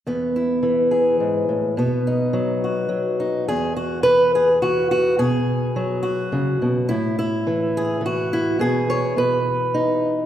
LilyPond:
\new Staff \with { instrumentName = "Steel-string acoustic guitar" } { \time 3/4 \key e \major \tempo 4 = 105 << { b8 e'4 gis'4. | b8 dis'4 fis'4 dis'8 | gis'8 fis'8 b'8 gis'8 fis'8 fis'8 | gis'4. fis'4. |
e'8 e'4 gis'8 fis'8 e'8 | gis'8 cis''8 b'2 | } \\ { e,4 e4 gis,8 a,8 | b,4 fis4 fis4 | e,4 e4 e4 | b,4 fis4 cis8 b,8 |
a,4 e4 e4 | b,4 b,4 dis'4 | } >> }